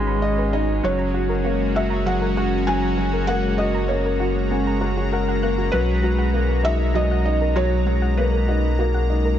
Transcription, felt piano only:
0.00 0.49 D#5 medium
0.84 1.79 C#5 loud
1.76 2.07 E5 medium
2.06 2.69 F#5 loud
2.67 3.30 G#5 loud
3.27 3.59 F#5 loud
3.58 3.90 D#5 medium
3.88 4.46 C#5 medium
5.72 6.67 B4 loud
6.65 6.97 E5 loud
6.95 7.59 D#5 loud
7.56 8.20 C#5 loud
8.17 8.75 B4 medium

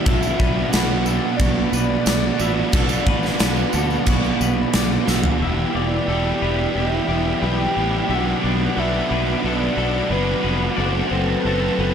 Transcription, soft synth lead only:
0.04 0.72 E5 loud
0.70 1.38 F#5 loud
1.37 4.73 D5 medium
5.75 6.79 D5 loud
6.78 7.46 E5 loud
7.45 8.16 G5 loud
8.15 8.81 F#5 loud
8.79 9.45 E5 loud
9.45 10.13 D5 loud
10.12 10.62 B4 medium
11.10 11.94 B4 medium

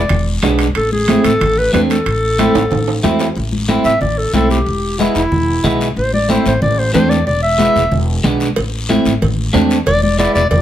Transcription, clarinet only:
0.00 0.39 D5 medium
0.77 0.91 A4 medium
0.92 1.26 G#4 medium
1.24 1.60 A4 loud
1.58 1.73 B4 medium
1.74 1.81 B4 medium
1.90 3.00 A4 medium
3.85 4.00 E5 medium
4.01 4.20 D5 medium
4.18 4.33 A4 medium
4.34 4.50 A4 medium
4.50 5.01 G4 medium
4.99 5.15 E4 medium
5.15 5.79 E4 medium
5.97 6.13 C5 medium
6.14 6.29 D5 medium
6.30 6.46 C5 medium
6.47 6.62 C5 medium
6.62 6.80 D5 medium
6.79 6.93 C5 medium
6.94 7.11 C5 loud
7.10 7.26 D5 medium
7.26 7.42 D5 medium
7.42 8.06 E5 medium
9.87 10.02 D5 loud
10.03 10.18 D5 medium
10.19 10.33 D5 medium
10.34 10.49 D5 loud
10.50 10.62 D5 medium

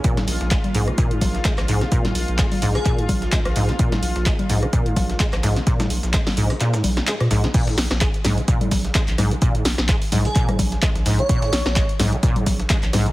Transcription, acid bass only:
0.04 0.19 A#2 loud
0.17 0.26 G#2 loud
0.51 0.58 G#3 medium
0.75 0.89 G#2 loud
0.88 0.91 F3 medium
0.98 1.13 A#2 loud
1.11 1.20 G#2 loud
1.45 1.52 G#3 medium
1.68 1.83 G#2 loud
1.81 1.85 F3 medium
1.92 2.06 A#2 loud
2.05 2.13 G#2 loud
2.39 2.46 G#3 medium
2.62 2.77 G#2 loud
2.75 2.79 F3 medium
2.86 3.00 A#2 loud
2.99 3.07 G#2 loud
3.32 3.40 G#3 medium
3.56 3.70 G#2 loud
3.69 3.72 F3 medium
3.79 3.94 A#2 loud
3.92 4.01 G#2 loud
4.26 4.33 G#3 medium
4.50 4.64 G#2 loud
4.63 4.66 F3 medium
4.73 4.88 A#2 loud
4.86 4.95 G#2 loud
5.20 5.27 G#3 medium
5.43 5.58 G#2 loud
5.56 5.60 F3 medium
5.67 5.81 A#2 loud
5.80 5.88 G#2 loud
6.14 6.21 G#3 medium
6.37 6.52 G#2 loud
6.50 6.54 F3 medium
6.61 6.75 A#2 loud
6.74 6.82 G#2 loud
7.07 7.15 G#3 medium
7.31 7.45 G#2 loud
7.44 7.47 F3 medium
7.54 7.69 A#2 loud
7.67 7.76 G#2 loud
8.01 8.08 G#3 medium
8.25 8.39 G#2 loud
8.38 8.41 F3 medium
8.48 8.63 A#2 loud
8.61 8.70 G#2 loud
8.95 9.02 G#3 medium
9.18 9.33 G#2 loud
9.31 9.35 F3 medium
9.42 9.56 A#2 loud
9.55 9.63 G#2 loud
9.89 9.96 G#3 medium
10.12 10.27 G#2 loud
10.25 10.29 F3 medium
10.36 10.50 A#2 loud
10.49 10.57 G#2 loud
10.82 10.90 G#3 medium
11.06 11.20 G#2 loud
11.19 11.22 F3 medium
11.29 11.44 A#2 loud
11.42 11.51 G#2 loud
11.76 11.83 G#3 medium
12.00 12.14 G#2 loud
12.13 12.16 F3 medium
12.23 12.38 A#2 loud
12.36 12.45 G#2 loud
12.70 12.77 G#3 medium
12.93 13.08 G#2 loud
13.06 13.10 F3 medium

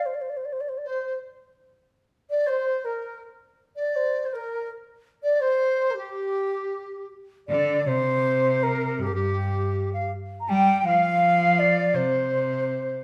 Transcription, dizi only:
0.85 1.14 C5 medium
2.31 2.48 D5 medium
2.47 2.87 C5 medium
2.86 3.22 A#4 medium
3.76 4.27 D5 medium
4.25 4.35 C5 medium
4.33 4.69 A#4 medium
5.23 5.44 D5 medium
5.42 5.97 C5 medium
5.98 7.08 G4 medium
7.51 7.85 D5 medium
7.89 8.66 C5 medium
8.64 9.04 A#4 medium
9.03 9.14 G4 medium
9.15 9.90 G4 medium
9.93 10.11 F5 medium
10.51 10.88 G5 medium
10.86 11.40 F5 medium
11.40 11.57 F5 medium
11.58 11.96 D5 medium
11.94 13.04 C5 medium

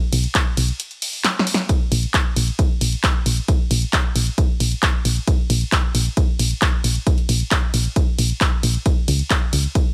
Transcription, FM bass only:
0.13 0.27 B1 loud
0.57 0.71 B1 medium
1.92 2.06 A#1 loud
2.36 2.50 A#1 loud
2.81 2.95 A#1 medium
3.26 3.40 A#1 medium
3.71 3.85 A#1 loud
4.16 4.29 A#1 medium
4.60 4.74 A#1 medium
5.05 5.19 A#1 medium
5.50 5.64 A#1 loud
5.95 6.09 A#1 medium
6.39 6.53 A#1 medium
6.84 6.98 A#1 medium
7.29 7.43 A#1 loud
7.74 7.88 A#1 medium
8.19 8.32 A#1 loud
8.63 8.77 A#1 loud
9.08 9.22 C#2 loud
9.53 9.67 C#2 medium

